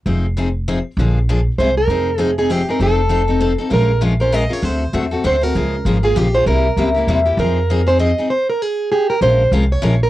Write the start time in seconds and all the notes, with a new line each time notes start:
0.06 F1 F3 C4 D#4 G#4
0.37 F3 C4 D#4 G#4
0.68 F3 C4 D#4 G#4
0.97 A#1 D3 F3 A#3 D4 G#4
1.29 D3 F3 A#3 D4 G#4
1.58 C2 C3 G#3 A#3 E4 G#4 C5
1.77 A#4
1.87 F1 F3 C4 D#4 G#4
2.18 F3 C4 D#4 G#4
2.38 C4 D#4 G#4
2.50 F3 C4 D#4 G4 G#4
2.69 C4 D#4 G#4 A#4
2.80 F1 F3 C4 D#4 A4
3.09 F3 C4 D#4 A4
3.28 C4 D#4 A4
3.40 F3 C4 D#4 A4
3.58 C4 D#4 A4
3.70 A#1 F3 G#3 C#4 F4 A#4
4.01 F3 G#3 C#4 F4 A#4
4.20 C#4 F4 A#4 C5
4.32 F3 G#3 C#4 F4 A#4 D#5
4.49 C#4 F4 A#4 C#5
4.62 D2 D3 A3 C4 F#4 A4 C5
4.93 E2 D3 A3 C4 F#4 A4
5.11 C4 F#4 A4
5.24 D2 D3 A3 C4 F#4 A4 C5
5.41 C4 F#4 A4 A#4
5.55 C#2 C#3 F3 A#3 F4 G#4
5.85 G#1 C#3 F3 A#3 F4 G#4
6.03 A#3 F4 G#4
6.16 A#1 C#3 F3 A#3 F4 G4 G#4
6.34 A#3 F4 G#4 C5
6.46 C2 C3 G3 A#3 E4 G4 A#4
6.77 C#2 C3 G3 A#3 E4 G4
6.94 A#3 E4 G4
7.07 E2 C3 G3 A#3 E4 G4
7.25 A#3 E4 G4
7.37 F2 F3 C4 D#4 G#4 A#4
7.70 F3 C4 D#4 G#4
7.86 C4 D#4 G#4 C5
7.99 F3 C4 D#4 G#4 D#5
8.18 C4 D#4 G#4
8.30 C5
8.50 A#4
8.62 G#4
8.92 G4 G#4
9.10 A#4
9.21 A#1 F3 G#3 C#4 F4 A#4 C5
9.51 C2 F3 G#3 C#4 F4 A#4
9.72 C#5
9.82 A#1 F3 G#3 C#4 F4 A#4
10.03 A#4